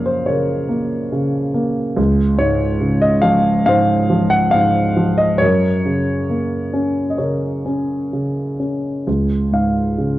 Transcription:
Already playing: F#2 C#3 F3 A#3 A#4 C#5 D#5 F5
0.06 C5
0.26 C#3 A#4 C#5
0.69 A#3
1.12 C#3
1.54 A#3
1.96 C#2
2.38 G#2 C#5
2.81 C#3
3.02 D#5
3.22 F3 F5
3.66 G#2 C5 F5
4.10 F3
4.30 F#5
4.51 G#2 F5
4.97 F3
5.18 D#5
5.38 F#2 A#4 C#5
5.85 C#3
6.30 A#3
6.73 C#4
7.10 D#5
7.18 C#3 A#4 C#5
7.65 C#4
8.13 C#3
8.60 C#4
9.07 C#2
9.52 G#2 F5
9.98 C#3

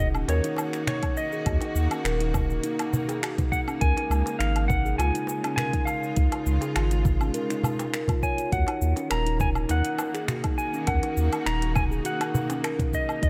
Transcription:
Already playing: D#1 D#3 A#3 D#4
0.15 C#4, low woodblock, shaker
0.20 F#4
0.28 D#2 A#4 C#5, closed hi-hat, darbuka tek, shaker
0.44 D#4, closed hi-hat, shaker
0.57 darbuka tek, low woodblock, shaker
0.73 finger snap, closed hi-hat, shaker
0.87 D#4 C#5, finger snap, closed hi-hat, darbuka ka, darbuka dum, shaker
1.03 kick, closed hi-hat, low woodblock, shaker
1.17 D#5, shaker
1.32 G#4, shaker
1.46 D#2 F#4, kick, closed hi-hat, low woodblock, shaker
1.61 D#4, closed hi-hat, darbuka tek
1.75 D#2, shaker
1.90 C#4, closed hi-hat, low woodblock, shaker
2.05 D#1 A#4, finger snap, closed hi-hat, shaker
2.20 D#4, closed hi-hat
2.34 kick, darbuka dum, low woodblock, shaker
2.50 shaker
2.64 D#4, closed hi-hat, shaker
2.79 finger snap, closed hi-hat, low woodblock, shaker
2.93 darbuka dum, shaker
3.08 G#4, closed hi-hat, darbuka tek, shaker
3.22 F#4, finger snap, closed hi-hat, low woodblock, shaker
3.38 D#4, kick, closed hi-hat, darbuka dum, shaker
3.52 F#5, kick, shaker
3.67 C#4, low woodblock, shaker
3.81 C#2 C#3 A#4 G#5, kick, closed hi-hat, shaker
3.97 G#3 D#4, closed hi-hat, darbuka tek
4.10 C#2, low woodblock, shaker
4.26 closed hi-hat, darbuka tek, shaker
4.39 G#1 D#4 F5, finger snap, closed hi-hat, shaker
4.56 closed hi-hat, low woodblock
4.68 F#5, kick, darbuka dum, shaker
4.85 G#4, shaker
4.98 C#2 F4 G#5, closed hi-hat, darbuka tek, low woodblock, shaker
5.14 D#4, closed hi-hat, shaker
5.27 darbuka tek, shaker
5.44 C#4, finger snap, closed hi-hat, low woodblock, shaker
5.56 A#4 G#5, finger snap, closed hi-hat, darbuka ka, darbuka dum, shaker
5.65 F4
5.73 D#4, kick, closed hi-hat, shaker
5.85 F5, low woodblock, shaker
6.03 shaker
6.16 C#2 D#4, kick, closed hi-hat, shaker
6.32 closed hi-hat, darbuka tek, low woodblock
6.46 C#2, shaker
6.61 G#4, closed hi-hat, darbuka tek, shaker
6.76 G#1 F4, finger snap, closed hi-hat, low woodblock, shaker
6.91 D#4, closed hi-hat, shaker
7.05 kick, darbuka dum, shaker
7.21 C#4, low woodblock, shaker
7.34 A#4, closed hi-hat, shaker
7.50 D#4, finger snap, closed hi-hat, shaker
7.63 darbuka dum, low woodblock, shaker
7.79 closed hi-hat, darbuka tek, shaker
7.93 A#4, finger snap, closed hi-hat, shaker
8.08 F4, kick, closed hi-hat, darbuka dum, low woodblock, shaker
8.23 C#5 G#5, kick, shaker
8.38 F4, closed hi-hat, shaker
8.52 D#2 D#3 F#4 F#5, kick, closed hi-hat, shaker
8.67 D#4, closed hi-hat, darbuka tek, low woodblock
8.82 D#2, shaker
8.96 C#4, closed hi-hat, darbuka tek, shaker
9.08 D#1 A#3 A#4 A#5, finger snap, closed hi-hat, low woodblock, shaker
9.26 D#4, closed hi-hat
9.40 G#5, kick, darbuka dum, shaker
9.55 low woodblock, shaker
9.64 D#4
9.69 D#2 D#4 F#5, closed hi-hat, darbuka tek, shaker
9.85 closed hi-hat, shaker
9.99 darbuka tek, low woodblock, shaker
10.14 G#4, finger snap, closed hi-hat, shaker
10.28 F#4, finger snap, closed hi-hat, darbuka ka, darbuka dum, shaker
10.44 D#4, kick, closed hi-hat, low woodblock, shaker
10.58 G#5, shaker
10.73 C#4, shaker
10.87 D#2 A#4 F#5, kick, closed hi-hat, low woodblock, shaker
11.03 D#4, closed hi-hat, darbuka tek
11.17 D#2, shaker
11.33 closed hi-hat, low woodblock, shaker
11.46 D#1 D#4 A#5, finger snap, closed hi-hat, shaker
11.62 closed hi-hat
11.76 G#5, kick, darbuka dum, low woodblock, shaker
11.91 G#4, shaker
12.05 F#4 F#5, closed hi-hat, shaker
12.20 D#4, finger snap, closed hi-hat, low woodblock, shaker
12.35 darbuka dum, shaker
12.50 C#4, closed hi-hat, darbuka tek, shaker
12.64 A#4, finger snap, closed hi-hat, low woodblock, shaker
12.79 D#4, kick, closed hi-hat, darbuka dum, shaker
12.93 D#5, kick, shaker
13.09 low woodblock, shaker
13.22 C#2 C#3 D#4 C#5, kick, closed hi-hat, shaker

